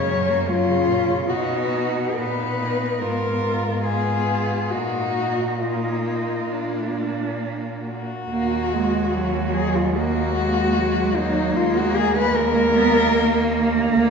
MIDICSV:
0, 0, Header, 1, 5, 480
1, 0, Start_track
1, 0, Key_signature, -6, "minor"
1, 0, Tempo, 793651
1, 782, Time_signature, 4, 2, 24, 8
1, 782, Tempo, 877193
1, 1262, Tempo, 835655
1, 2222, Tempo, 890208
1, 4622, Tempo, 853485
1, 5102, Tempo, 803213
1, 7022, Tempo, 766284
1, 8113, End_track
2, 0, Start_track
2, 0, Title_t, "Cello"
2, 0, Program_c, 0, 42
2, 0, Note_on_c, 0, 73, 86
2, 293, Note_on_c, 0, 65, 95
2, 302, Note_off_c, 0, 73, 0
2, 778, Note_on_c, 0, 66, 73
2, 787, Note_off_c, 0, 65, 0
2, 1260, Note_on_c, 0, 71, 82
2, 1269, Note_off_c, 0, 66, 0
2, 1734, Note_on_c, 0, 70, 85
2, 1742, Note_off_c, 0, 71, 0
2, 2216, Note_off_c, 0, 70, 0
2, 2220, Note_on_c, 0, 68, 80
2, 2685, Note_on_c, 0, 66, 78
2, 2694, Note_off_c, 0, 68, 0
2, 3174, Note_on_c, 0, 65, 56
2, 3182, Note_off_c, 0, 66, 0
2, 4133, Note_off_c, 0, 65, 0
2, 4376, Note_on_c, 0, 66, 74
2, 5336, Note_on_c, 0, 68, 83
2, 5345, Note_off_c, 0, 66, 0
2, 5463, Note_on_c, 0, 65, 75
2, 5472, Note_off_c, 0, 68, 0
2, 5580, Note_on_c, 0, 66, 95
2, 5589, Note_off_c, 0, 65, 0
2, 6304, Note_on_c, 0, 63, 94
2, 6313, Note_off_c, 0, 66, 0
2, 6545, Note_on_c, 0, 65, 88
2, 6554, Note_off_c, 0, 63, 0
2, 6669, Note_on_c, 0, 66, 86
2, 6678, Note_off_c, 0, 65, 0
2, 6782, Note_on_c, 0, 68, 97
2, 6791, Note_off_c, 0, 66, 0
2, 6902, Note_off_c, 0, 68, 0
2, 6909, Note_on_c, 0, 71, 109
2, 7018, Note_on_c, 0, 70, 109
2, 7027, Note_off_c, 0, 71, 0
2, 7980, Note_off_c, 0, 70, 0
2, 8113, End_track
3, 0, Start_track
3, 0, Title_t, "Cello"
3, 0, Program_c, 1, 42
3, 0, Note_on_c, 1, 61, 69
3, 755, Note_off_c, 1, 61, 0
3, 784, Note_on_c, 1, 63, 59
3, 1241, Note_off_c, 1, 63, 0
3, 1270, Note_on_c, 1, 63, 61
3, 1747, Note_on_c, 1, 65, 53
3, 1756, Note_off_c, 1, 63, 0
3, 2225, Note_off_c, 1, 65, 0
3, 2231, Note_on_c, 1, 65, 56
3, 2696, Note_on_c, 1, 63, 48
3, 2704, Note_off_c, 1, 65, 0
3, 3178, Note_off_c, 1, 63, 0
3, 3182, Note_on_c, 1, 63, 51
3, 3665, Note_on_c, 1, 62, 52
3, 3673, Note_off_c, 1, 63, 0
3, 4510, Note_off_c, 1, 62, 0
3, 4623, Note_on_c, 1, 58, 63
3, 4869, Note_on_c, 1, 56, 68
3, 4878, Note_off_c, 1, 58, 0
3, 5113, Note_on_c, 1, 54, 68
3, 5122, Note_off_c, 1, 56, 0
3, 5598, Note_on_c, 1, 58, 69
3, 5606, Note_off_c, 1, 54, 0
3, 6071, Note_on_c, 1, 56, 72
3, 6080, Note_off_c, 1, 58, 0
3, 6312, Note_on_c, 1, 54, 70
3, 6321, Note_off_c, 1, 56, 0
3, 6555, Note_on_c, 1, 56, 72
3, 6564, Note_off_c, 1, 54, 0
3, 7022, Note_on_c, 1, 58, 78
3, 7032, Note_off_c, 1, 56, 0
3, 7257, Note_off_c, 1, 58, 0
3, 7261, Note_on_c, 1, 59, 81
3, 7500, Note_off_c, 1, 59, 0
3, 7504, Note_on_c, 1, 58, 101
3, 8113, Note_off_c, 1, 58, 0
3, 8113, End_track
4, 0, Start_track
4, 0, Title_t, "Cello"
4, 0, Program_c, 2, 42
4, 0, Note_on_c, 2, 49, 59
4, 63, Note_on_c, 2, 54, 65
4, 72, Note_off_c, 2, 49, 0
4, 179, Note_on_c, 2, 58, 57
4, 188, Note_off_c, 2, 54, 0
4, 301, Note_on_c, 2, 54, 65
4, 310, Note_off_c, 2, 58, 0
4, 422, Note_on_c, 2, 49, 58
4, 431, Note_off_c, 2, 54, 0
4, 538, Note_on_c, 2, 46, 58
4, 547, Note_off_c, 2, 49, 0
4, 658, Note_on_c, 2, 49, 53
4, 667, Note_off_c, 2, 46, 0
4, 782, Note_off_c, 2, 49, 0
4, 784, Note_on_c, 2, 59, 64
4, 1241, Note_off_c, 2, 59, 0
4, 1262, Note_on_c, 2, 59, 62
4, 1730, Note_off_c, 2, 59, 0
4, 1740, Note_on_c, 2, 59, 56
4, 2212, Note_off_c, 2, 59, 0
4, 2225, Note_on_c, 2, 59, 56
4, 2697, Note_on_c, 2, 58, 47
4, 2705, Note_off_c, 2, 59, 0
4, 3180, Note_off_c, 2, 58, 0
4, 3184, Note_on_c, 2, 58, 57
4, 3649, Note_off_c, 2, 58, 0
4, 3661, Note_on_c, 2, 58, 50
4, 4492, Note_off_c, 2, 58, 0
4, 4626, Note_on_c, 2, 58, 62
4, 4868, Note_on_c, 2, 56, 62
4, 4877, Note_off_c, 2, 58, 0
4, 5105, Note_on_c, 2, 54, 63
4, 5114, Note_off_c, 2, 56, 0
4, 5590, Note_on_c, 2, 58, 63
4, 5599, Note_off_c, 2, 54, 0
4, 5827, Note_off_c, 2, 58, 0
4, 5830, Note_on_c, 2, 56, 67
4, 6069, Note_on_c, 2, 54, 72
4, 6078, Note_off_c, 2, 56, 0
4, 6311, Note_on_c, 2, 58, 71
4, 6320, Note_off_c, 2, 54, 0
4, 7028, Note_on_c, 2, 56, 79
4, 7037, Note_off_c, 2, 58, 0
4, 7270, Note_on_c, 2, 58, 79
4, 7279, Note_off_c, 2, 56, 0
4, 7984, Note_off_c, 2, 58, 0
4, 7987, Note_on_c, 2, 58, 85
4, 8113, Note_off_c, 2, 58, 0
4, 8113, End_track
5, 0, Start_track
5, 0, Title_t, "Cello"
5, 0, Program_c, 3, 42
5, 0, Note_on_c, 3, 42, 65
5, 773, Note_off_c, 3, 42, 0
5, 777, Note_on_c, 3, 47, 67
5, 1260, Note_on_c, 3, 46, 61
5, 1269, Note_off_c, 3, 47, 0
5, 1739, Note_on_c, 3, 44, 59
5, 1747, Note_off_c, 3, 46, 0
5, 2690, Note_on_c, 3, 46, 52
5, 2698, Note_off_c, 3, 44, 0
5, 3652, Note_off_c, 3, 46, 0
5, 3656, Note_on_c, 3, 46, 50
5, 4489, Note_off_c, 3, 46, 0
5, 4623, Note_on_c, 3, 39, 67
5, 6527, Note_off_c, 3, 39, 0
5, 6551, Note_on_c, 3, 39, 76
5, 7976, Note_on_c, 3, 38, 90
5, 7986, Note_off_c, 3, 39, 0
5, 8113, Note_off_c, 3, 38, 0
5, 8113, End_track
0, 0, End_of_file